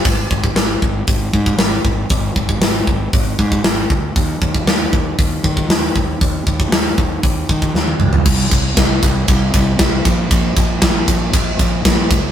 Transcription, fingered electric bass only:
X:1
M:4/4
L:1/8
Q:1/4=117
K:Ablyd
V:1 name="Fingered electric bass" clef=bass
A,,, A,,, A,,, A,,, A,,, A,, A,,, A,,, | A,,, A,,, A,,, A,,, A,,, A,, A,,, D,, | E,, E,, E,, E,, E,, E, E,, E,, | E,, E,, E,, E,, E,, E, E,, _D,, |
C,, C,, C,, C,, C,, C,, C,, B,,, | B,,, B,,, B,,, B,,, B,,, B,,, B,,, D,, |]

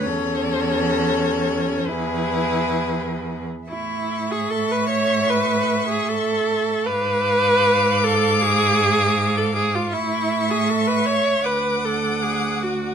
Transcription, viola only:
X:1
M:4/4
L:1/16
Q:1/4=76
K:A
V:1 name="Viola"
C8 E6- E z | E3 G A B c2 B3 G A4 | B6 A2 G4- G A G ^E | E3 G A B c2 B2 A2 G2 F2 |]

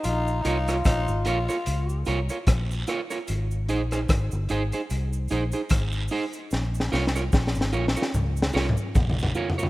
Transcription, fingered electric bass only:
X:1
M:4/4
L:1/16
Q:"Swing 16ths" 1/4=74
K:Bbdor
V:1 name="Fingered electric bass" clef=bass
B,,,2 C,,2 B,,, A,,, B,,, z D,,2 C,, z B,,,2 z2 | A,,,2 B,,,2 A,,, G,,, A,,, z C,,2 B,,, z A,,,2 z2 | B,,,2 C,,2 B,,, A,,, B,,, z D,,2 C,, z B,,,2 z2 |]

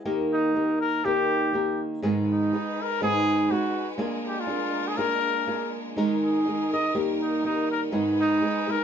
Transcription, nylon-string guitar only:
X:1
M:2/4
L:1/8
Q:"Swing" 1/4=122
K:G#m
V:1 name="Nylon-string guitar"
[D,A,D=GA]2 [A,DGA]2 | [D,A,D=GA]2 [A,DGA]2 | [G,,D,G,B,DG]2 [G,B,DG]2 | [G,,D,G,B,DG]2 [G,B,DG]2 |
[A,=D^EG]2 [A,DEG]2 | [A,=D^EG]2 [A,DEG]2 | [D,G,DGA]2 [G,DGA] [DGA] | [D,A,D=GA]2 [A,DGA]2 |
[G,,D,G,B,DG]2 [G,B,DG] [G,B,DG] |]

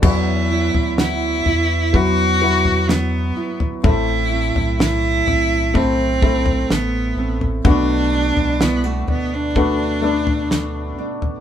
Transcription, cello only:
X:1
M:4/4
L:1/16
Q:1/4=63
K:Ador
V:1 name="Cello"
E4 E4 F4 B,3 z | E4 E4 C4 B,3 z | D4 B, A, B, D6- D z2 |]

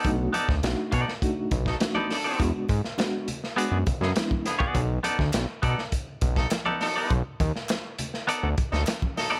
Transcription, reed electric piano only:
X:1
M:4/4
L:1/8
Q:1/4=102
K:E
V:1 name="Reed electric piano"
[A,=D^DF] z [A,=D^DF] z [A,=D^DF] z [A,=D^DF] z | [G,B,=DF] z [G,B,DF] z [G,B,DF] z [G,B,DE] z | z8 | z8 |]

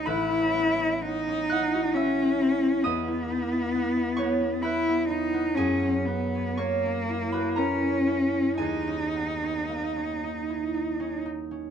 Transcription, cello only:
X:1
M:3/4
L:1/8
Q:1/4=61
K:D#phr
V:1 name="Cello"
E2 D2 C2 | B,4 E D | C B, A,2 C2 | D4- D z |]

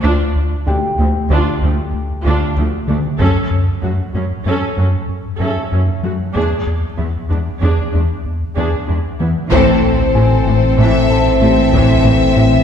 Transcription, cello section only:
X:1
M:5/4
L:1/8
Q:1/4=95
K:Ephr
V:1 name="Cello section" clef=bass
D,, z D,, D,, D,, D,, z D,, D,, D,, | ^F,, z F,, F,, F,, F,, z F,, F,, F,, | E,, z E,, E,, E,, E,, z E,, E,, E,, | [K:Am] A,, A,, A,, A,, A,, z A,, A,, A,, A,, |]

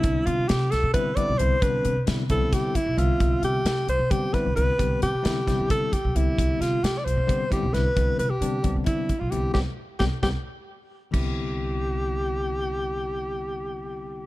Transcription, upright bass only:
X:1
M:7/8
L:1/16
Q:1/4=132
K:C
V:1 name="Upright bass" clef=bass
C,, z C, z C,2 C,, C,2 z2 B,,, C,, z | C,, z C, z C,2 C,, C,2 z2 B,,, C,, z | C,, z C, z C,2 C,, C,2 z2 B,,, C,, z | C,, z C, z C,2 C,, C,2 z2 B,,, C,, z |
C,, z C, z C,2 C,, C,2 z2 B,,, C,, z | C,, z C, z C,2 C,, C,2 z2 B,,, C,, z | C,, z3 C,, z C,, z6 z | C,,12- C,,2- |
C,,12- C,,2 |]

